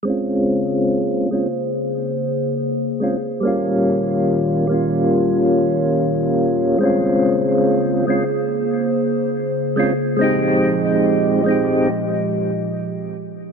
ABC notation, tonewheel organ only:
X:1
M:4/4
L:1/8
Q:"Swing 16ths" 1/4=71
K:Bbdor
V:1 name="Tonewheel organ"
[A,CDF]3 [A,CDF] z3 [A,CDF] | [G,B,DF]3 [G,B,DF]4- [G,B,DF] | [A,CDF]3 [A,CDF] z3 [A,CDF] | [A,CEG]3 [A,CEG] z4 |]